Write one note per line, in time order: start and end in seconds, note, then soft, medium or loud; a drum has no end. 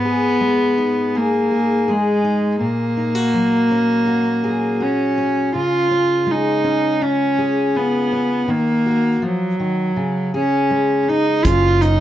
0.00 2.57 G#2 medium
0.00 1.18 B3 medium
0.05 1.15 G#4 soft
0.41 2.63 G#3 soft
0.78 2.23 D#4 soft
1.15 1.91 A#3 medium
1.15 1.50 G#4 soft
1.51 1.87 G#4 soft
1.88 2.61 G#3 medium
1.88 4.43 G#4 soft
2.24 2.57 D#4 soft
2.60 5.49 A#2 medium
2.60 4.84 A#3 medium
2.97 3.15 D#4 soft
3.15 4.06 F#4 soft
3.34 5.54 F#3 soft
3.71 5.17 C#4 soft
4.07 4.79 F#4 soft
4.44 7.37 G#4 medium
4.80 5.55 C#4 medium
4.80 5.50 F#4 soft
5.18 5.91 C#4 soft
5.55 8.47 C#3 medium
5.55 6.32 F4 medium
5.91 6.64 C#4 soft
6.26 8.44 G#3 soft
6.31 7.05 D#4 medium
6.64 8.11 C#4 soft
7.02 7.78 C#4 medium
7.02 7.74 F4 soft
7.38 8.49 G#4 soft
7.75 8.52 B3 medium
7.75 8.44 F4 soft
8.12 8.51 C#4 soft
8.48 9.22 D#3 medium
8.48 9.27 A#3 medium
8.86 9.92 F#4 soft
9.22 9.59 F3 soft
9.22 10.35 F#3 medium
9.60 9.96 D#3 soft
9.96 11.45 C#3 medium
10.34 11.03 C#4 medium
10.34 11.45 G#4 soft
10.70 11.40 G#3 soft
11.03 11.10 C#4 soft
11.09 11.46 D#4 medium
11.09 11.41 D#4 soft
11.44 12.00 F#1 medium
11.44 12.00 F#2 medium
11.44 11.82 C#4 medium
11.44 11.83 F4 medium
11.44 kick medium
11.44 closed hi-hat medium
11.82 12.00 C#4 soft
11.82 12.00 D#4 medium
11.82 closed hi-hat soft